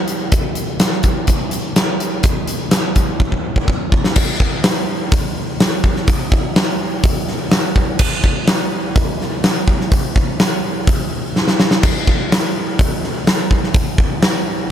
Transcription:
0.08 closed hi-hat medium
0.32 kick loud
0.32 closed hi-hat medium
0.55 closed hi-hat medium
0.80 snare loud
0.80 closed hi-hat medium
0.92 snare soft
1.03 kick medium
1.03 closed hi-hat medium
1.27 kick medium
1.27 closed hi-hat medium
1.51 closed hi-hat medium
1.76 snare loud
1.76 closed hi-hat medium
2.00 closed hi-hat medium
2.23 kick loud
2.23 closed hi-hat medium
2.47 closed hi-hat medium
2.71 snare loud
2.71 closed hi-hat medium
2.96 kick medium
2.96 closed hi-hat medium
3.20 kick medium
3.32 kick soft
3.56 kick medium
3.68 kick medium
3.92 kick medium
4.04 snare medium
4.16 kick loud
4.16 crash loud
4.40 kick medium
4.64 snare loud
4.64 open hi-hat medium
5.12 kick loud
5.12 open hi-hat medium
5.60 snare loud
5.60 open hi-hat medium
5.84 kick medium
5.96 snare soft
6.07 kick loud
6.07 open hi-hat medium
6.32 kick medium
6.56 snare loud
6.56 open hi-hat medium
7.03 kick loud
7.03 open hi-hat medium
7.28 snare soft
7.51 snare loud
7.51 open hi-hat medium
7.76 kick medium
7.99 kick loud
7.99 crash loud
8.24 kick medium
8.47 snare loud
8.47 open hi-hat medium
8.95 kick loud
8.95 open hi-hat medium
9.21 snare soft
9.44 snare loud
9.44 open hi-hat medium
9.68 kick medium
9.81 snare soft
9.92 kick loud
9.92 open hi-hat medium
10.16 kick medium
10.40 snare loud
10.40 open hi-hat medium
10.87 kick loud
10.87 open hi-hat medium
11.36 snare medium
11.48 snare medium
11.60 snare loud
11.71 snare medium
11.83 kick loud
11.83 crash loud
12.07 kick medium
12.32 snare loud
12.32 open hi-hat medium
12.79 kick loud
12.79 open hi-hat medium
13.04 snare soft
13.27 snare loud
13.27 open hi-hat medium
13.51 kick medium
13.64 snare soft
13.74 kick loud
13.74 open hi-hat medium
13.98 kick medium
14.22 snare loud
14.22 open hi-hat medium

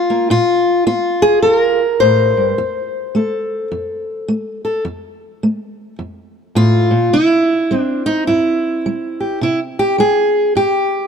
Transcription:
0.00 0.30 F4 medium
0.10 0.28 A#3 soft
0.30 0.83 A#2 medium
0.30 0.85 F4 medium
0.87 1.40 A#3 medium
0.87 1.79 F4 medium
1.22 1.42 G#4 loud
1.42 1.97 F2 medium
1.42 1.56 A4 loud
1.56 2.57 A#4 loud
2.00 2.37 A2 medium
2.00 4.28 C5 medium
2.37 2.58 G2 medium
2.58 3.11 F2 medium
3.15 3.67 A3 medium
3.15 4.63 A4 soft
3.72 4.24 F2 medium
4.28 4.81 A3 medium
4.65 4.83 A4 soft
4.85 5.38 F2 medium
5.43 5.96 A3 medium
5.99 6.52 F2 medium
6.55 6.92 A2 medium
6.55 7.13 F4 loud
6.91 7.13 A#2 medium
7.13 7.66 C3 medium
7.13 7.81 E4 loud
7.71 8.23 G3 medium
7.71 11.07 C4 soft
7.81 8.06 D4 loud
8.06 8.27 D#4 medium
8.27 8.81 G2 medium
8.27 9.41 E4 medium
8.86 9.38 G3 medium
9.20 9.39 G4 soft
9.41 9.94 C3 medium
9.41 9.59 E4 medium
9.79 9.99 G4 medium
9.98 10.51 G3 medium
9.98 10.56 G#4 medium
10.55 11.07 G2 medium
10.55 11.07 G4 medium

